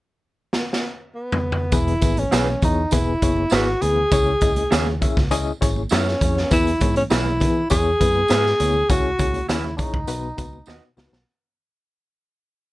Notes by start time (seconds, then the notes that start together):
0.53 snare
0.73 snare
1.15 B3
1.32 floor tom
1.52 floor tom
1.72 E1 E3 B3 E4 G#4 B4, kick, closed hi-hat, tambourine
1.88 closed hi-hat, muted conga
2.01 G#1 B3 E4 G#4 B4, kick, closed hi-hat, tambourine
2.17 C#4, closed hi-hat, high conga
2.31 B1 B3 E4 G#4 B4 E5, snare, closed hi-hat, tambourine, muted conga
2.47 muted conga, high conga
2.62 E2 B3 D#4 E4 G#4 C#5, kick, closed hi-hat, tambourine, low conga
2.91 E1 B3 E4 G#4 B4, kick, closed hi-hat, tambourine, muted conga, low conga
3.22 F#1 B3 E4 G#4 C#5, kick, closed hi-hat, tambourine
3.36 high conga
3.50 G#1 B3 E4 F#4 G#4 B4 E5, snare, closed hi-hat, tambourine
3.67 muted conga
3.82 D2 B3 E4 G#4 B4, closed hi-hat, tambourine, high conga
3.96 low conga
4.11 C#2 C#3 C#4 E4 G#4 C#5, kick, closed hi-hat, tambourine, muted conga
4.27 muted conga
4.41 C#2 C#4 E4 G#4 D#5, kick, closed hi-hat, tambourine
4.56 closed hi-hat, high conga
4.71 D#2 C#4 E4 G#4 C#5 E5, snare, closed hi-hat, tambourine, muted conga
4.87 high conga
5.02 C#4 E4 G#4 E5, kick, closed hi-hat, tambourine, low conga
5.17 C#2, kick, snare
5.31 C#4 E4 G#4 D#5, closed hi-hat, tambourine, muted conga, low conga
5.47 muted conga
5.61 G#1 C#4 E4 G#4 C#5, kick, closed hi-hat, tambourine
5.76 high conga
5.89 F#2 C#4 E4 G#4 C#5 E5, snare, closed hi-hat, tambourine
6.06 snare, muted conga
6.21 F2 C#4 E4 G#4 C#5, kick, closed hi-hat, tambourine, high conga
6.35 snare, low conga
6.51 E2 E3 B3 E4 G#4 B4, kick, closed hi-hat, tambourine, muted conga
6.67 closed hi-hat, muted conga
6.80 G#2 B3 E4 G#4 C#5, kick, closed hi-hat, tambourine
6.96 C#4, closed hi-hat, high conga
7.10 B1 B3 E4 G#4 B4 C#5 E5, snare, closed hi-hat, tambourine, muted conga
7.26 muted conga, high conga
7.40 E3 B3 E4 G#4 B4, kick, closed hi-hat, tambourine, low conga
7.70 E2 B3 E4 G#4 C#5, kick, closed hi-hat, tambourine, muted conga, low conga
8.00 F#2 B3 E4 G#4 B4, kick, closed hi-hat, tambourine
8.15 high conga
8.28 G#2 B3 E4 G#4 B4 E5, snare, closed hi-hat, tambourine
8.45 snare, muted conga
8.60 D2 B3 E4 G#4 C#5, closed hi-hat, tambourine, high conga
8.74 low conga
8.89 C#2 C#3 C#4 E4 F#4 G#4 C#5, kick, closed hi-hat, tambourine
9.19 C#2 C#4 E4 G#4 C#5, kick, closed hi-hat, tambourine
9.34 closed hi-hat, high conga
9.49 D#2 C#4 E4 G#4 C#5 E5, snare, closed hi-hat, tambourine
9.64 muted conga, high conga
9.77 C#4 D#4 E4 G#4 C#5, kick, closed hi-hat, tambourine, low conga
9.94 C#2, kick
10.07 B1 B2 B3 D#4 F#4 B4, closed hi-hat, tambourine, muted conga, low conga
10.25 muted conga
10.37 C#2 B3 D#4 F#4 B4, kick, closed hi-hat, tambourine
10.53 high conga
10.66 D#2 B3 D#4 F#4 B4 D#5, snare, tambourine
10.83 muted conga
10.97 C#2 B3 D#4 F#4 B4, snare, tambourine
11.12 B1, snare, low conga